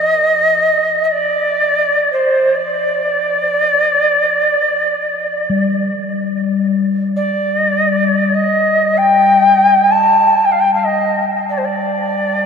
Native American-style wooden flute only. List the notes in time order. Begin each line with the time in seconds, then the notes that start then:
Already playing: D#5
1.05 D#5
1.11 D5
2.12 C5
2.55 D5
7.16 D5
8.34 D#5
8.97 G5
9.91 A5
10.45 G5
10.51 F5
10.60 G5
10.74 F5
10.84 D#5
11.49 D5
11.57 C5
11.64 D5